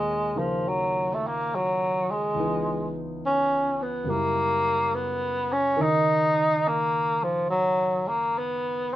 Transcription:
0.00 2.34 D#2 soft
0.00 2.35 A#2 soft
0.00 0.40 G#3 medium
0.00 2.35 C#4 soft
0.00 2.36 F4 soft
0.00 0.36 G#4 soft
0.35 2.34 C#3 soft
0.35 0.70 F3 medium
0.35 2.36 D#4 soft
0.35 2.37 G#4 soft
0.35 2.37 A#4 soft
0.68 1.15 F#3 medium
1.14 1.28 A3 medium
1.27 1.57 A#3 medium
1.55 2.13 F#3 medium
2.11 2.95 G#3 medium
2.34 4.06 C#2 soft
2.34 4.04 C#3 soft
2.34 4.07 E3 soft
2.34 4.08 B3 soft
2.39 4.09 D#4 soft
3.26 3.84 C#4 medium
3.82 4.12 B3 medium
4.04 5.76 F#2 soft
4.04 5.76 C#3 soft
4.04 5.77 G3 soft
4.08 4.96 A#3 medium
4.08 5.79 E4 soft
4.08 5.76 A#4 soft
4.95 5.54 B3 medium
5.53 5.83 C#4 medium
5.77 8.96 C#3 soft
5.77 8.96 D#3 soft
5.77 8.96 D#4 soft
5.77 8.96 A#4 soft
5.82 6.69 D#4 medium
6.67 7.25 A#3 medium
7.23 7.49 F3 medium
7.50 8.09 F#3 medium
8.08 8.39 A#3 medium
8.38 8.95 B3 medium

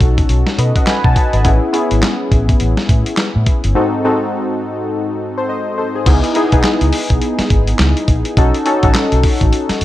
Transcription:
0.00 0.22 B1 medium
0.00 1.45 C#4 medium
0.00 1.47 D#4 medium
0.00 1.46 F#4 medium
0.00 1.46 A4 loud
0.00 kick medium
0.00 closed hi-hat medium
0.18 kick medium
0.18 closed hi-hat medium
0.29 0.42 B1 medium
0.29 closed hi-hat medium
0.47 snare medium
0.58 0.71 B2 medium
0.58 0.75 B4 medium
0.58 0.75 D#5 medium
0.58 closed hi-hat medium
0.76 0.87 D#5 medium
0.76 0.87 F#5 medium
0.76 kick medium
0.76 closed hi-hat medium
0.87 1.04 G#5 medium
0.87 1.41 B5 medium
0.87 snare medium
0.87 clap medium
0.87 closed hi-hat medium
1.04 1.13 B2 loud
1.04 1.15 F#5 medium
1.04 1.15 A5 medium
1.04 kick medium
1.16 1.32 D#5 medium
1.16 1.32 F#5 medium
1.16 kick medium
1.16 closed hi-hat medium
1.33 1.42 G#1 medium
1.33 1.61 B4 medium
1.33 1.61 D#5 medium
1.33 closed hi-hat soft
1.44 1.58 A1 loud
1.44 1.70 B3 medium
1.44 1.71 C#4 medium
1.44 1.71 E4 medium
1.44 1.71 G#4 medium
1.44 kick loud
1.44 closed hi-hat medium
1.73 2.76 B3 medium
1.73 2.76 C#4 medium
1.73 2.77 E4 medium
1.73 2.77 G#4 medium
1.73 closed hi-hat medium
1.91 2.00 G#1 medium
1.91 closed hi-hat medium
2.03 snare loud
2.03 clap medium
2.03 closed hi-hat medium
2.31 2.53 A1 medium
2.31 kick medium
2.31 closed hi-hat medium
2.49 kick medium
2.49 closed hi-hat medium
2.60 2.74 A1 medium
2.60 closed hi-hat medium
2.77 snare medium
2.89 3.02 A2 medium
2.89 kick medium
2.89 closed hi-hat medium
3.06 closed hi-hat medium
3.17 snare loud
3.17 clap medium
3.17 closed hi-hat medium
3.36 3.44 A2 loud
3.46 kick medium
3.46 closed hi-hat medium
3.64 3.73 G1 medium
3.64 closed hi-hat soft
3.75 4.01 G#2 medium
3.75 4.01 C4 medium
3.75 4.01 D#4 medium
3.75 4.01 F#4 medium
3.75 4.02 A4 medium
4.04 5.07 G#2 medium
4.04 5.08 C4 medium
4.04 5.08 D#4 medium
4.04 5.08 F#4 medium
4.04 5.08 A4 medium
5.38 5.49 A4 medium
5.38 5.48 C5 medium
5.49 5.77 C5 medium
5.49 5.76 D#5 medium
5.78 5.94 A4 medium
5.78 5.94 C5 medium
5.95 6.07 G#4 medium
6.06 6.19 C#2 loud
6.06 6.32 B3 medium
6.06 6.32 D#4 medium
6.06 6.33 E4 medium
6.06 6.33 G#4 medium
6.06 kick loud
6.06 closed hi-hat medium
6.06 crash medium
6.24 closed hi-hat medium
6.35 6.50 B3 medium
6.35 6.51 D#4 medium
6.35 6.51 E4 medium
6.35 6.51 G#4 loud
6.35 closed hi-hat medium
6.52 6.61 B1 medium
6.52 7.50 B3 loud
6.52 7.50 D#4 medium
6.52 7.50 E4 medium
6.52 7.50 G#4 loud
6.52 kick medium
6.52 closed hi-hat medium
6.64 snare loud
6.64 clap loud
6.64 closed hi-hat medium
6.81 6.90 C#2 medium
6.81 closed hi-hat medium
6.93 open hi-hat medium
7.10 7.19 B1 medium
7.10 kick medium
7.10 closed hi-hat medium
7.22 closed hi-hat medium
7.39 muted fingered electric bass stroke medium
7.39 snare medium
7.39 closed hi-hat medium
7.50 7.72 G#1 medium
7.50 kick medium
7.50 closed hi-hat medium
7.67 closed hi-hat medium
7.79 7.93 C#2 loud
7.79 snare loud
7.79 clap medium
7.79 closed hi-hat medium
7.97 closed hi-hat medium
8.08 8.21 A#1 loud
8.08 kick medium
8.08 closed hi-hat medium
8.25 closed hi-hat medium
8.37 8.50 B1 loud
8.37 8.63 C#4 medium
8.37 8.63 D#4 medium
8.37 8.63 F#4 medium
8.37 8.63 A4 medium
8.37 kick loud
8.37 closed hi-hat medium
8.54 closed hi-hat medium
8.66 8.81 C#4 medium
8.66 8.81 D#4 medium
8.66 8.81 F#4 medium
8.66 8.81 A4 loud
8.66 closed hi-hat medium
8.83 8.92 A1 medium
8.83 9.80 C#4 medium
8.83 9.81 D#4 medium
8.83 9.81 F#4 medium
8.83 9.81 A4 loud
8.83 kick loud
8.83 closed hi-hat medium
8.95 snare loud
8.95 clap loud
8.95 closed hi-hat medium
9.12 9.21 B1 loud
9.12 closed hi-hat medium
9.23 kick medium
9.23 open hi-hat medium
9.41 9.50 A1 medium
9.41 kick medium
9.41 closed hi-hat medium
9.53 closed hi-hat medium
9.69 muted fingered electric bass stroke soft
9.69 snare medium
9.69 closed hi-hat medium
9.81 9.85 F#1 medium
9.81 closed hi-hat medium

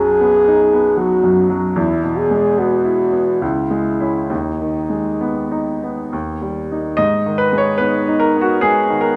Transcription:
0.00 1.74 B1 medium
0.00 1.24 F#2 soft
0.00 0.36 F#3 soft
0.00 0.99 G#4 medium
0.20 0.62 B3 soft
0.48 0.89 D#4 soft
0.73 1.15 B3 soft
0.97 1.40 F#3 soft
0.97 1.50 F#4 medium
1.24 1.67 F#2 soft
1.50 1.78 F#3 soft
1.76 3.38 E2 medium
1.76 2.19 E4 medium
2.04 2.47 B2 soft
2.18 2.61 G#4 medium
2.31 2.75 G#3 soft
2.58 3.03 B3 soft
2.58 3.43 F#4 medium
2.85 3.30 E4 soft
3.12 3.42 B3 soft
3.42 4.28 C#2 medium
3.42 4.30 E4 medium
3.71 4.19 G#3 soft
4.00 4.28 C#4 soft
4.00 4.28 E4 soft
4.30 6.08 D#2 medium
4.30 6.08 D#4 medium
4.61 5.10 D#3 soft
4.90 5.39 G#3 soft
5.21 5.70 B3 soft
5.52 6.00 D#4 soft
5.84 6.13 B3 soft
6.13 6.96 D#2 medium
6.42 6.88 G3 soft
6.72 6.96 A#3 soft
6.72 6.96 D#4 soft
6.97 9.16 G#2 medium
6.97 7.39 D#5 medium
7.26 7.70 D#3 soft
7.38 7.59 B4 medium
7.53 7.97 G#3 soft
7.58 7.79 C#5 medium
7.78 8.23 B3 soft
7.78 8.63 D#4 medium
7.78 8.20 B4 medium
8.08 8.51 D#4 soft
8.20 8.41 A#4 medium
8.36 8.78 B3 soft
8.41 8.61 F#4 medium
8.61 9.05 G#3 soft
8.61 9.16 B3 medium
8.61 9.01 G#4 medium
8.90 9.16 D#3 soft
9.01 9.16 A#4 medium

